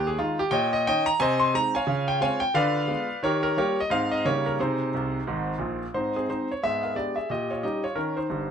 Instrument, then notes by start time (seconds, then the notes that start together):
grand piano
Already playing: D#2
0.07 G#4
0.18 D#3 G#3 D#4 F4
0.39 G4
0.51 A#2 C#5 D#5 G5
0.73 D#5
0.87 D#3 C#4 D#4 C#5 D#5 G5
1.06 A#5
1.20 C3 C5 D#5 G#5
1.40 C6
1.54 G#3 C4 D#4 A#5
1.75 C#5 F5 G#5
1.87 C#3 F4
2.08 G5
2.21 G#3 C4 F4 C#5 F5 G#5
2.40 G5
2.54 D3 F4 B4 D5 F5
2.88 G#3 B3 F4
3.23 D#3 G4 A#4 C#5
3.43 A#4
3.57 G3 A#3 F4 G4 A#4 C#5
3.80 D#5
3.90 G#2 G#3 C4 D#4 F5
4.11 D#5
4.25 C#3 G3 A#3 D#4 G4 A#4 C#5
4.46 A#4
4.60 C3 D#4 G#4 C5
4.94 C2 C3
5.27 G#1 G#2
5.58 A#1 A#2
5.94 G#2 C4 D#4 C5
6.16 C4 G#4
6.29 G#3 C4 D#4 C5
6.52 C#5
6.63 G#2 B3 G#4 E5
6.83 A#4 F5
6.95 G#3 B3 D4 G4 D5
7.16 G#4 E5
7.30 A#2 G4 D#5
7.51 F4 C#5
7.63 G3 C#4 D#4 G4 D#5
7.84 F4 C#5
7.96 D#3 C#4 A#4
8.17 D#4 C5
8.30 G1 G2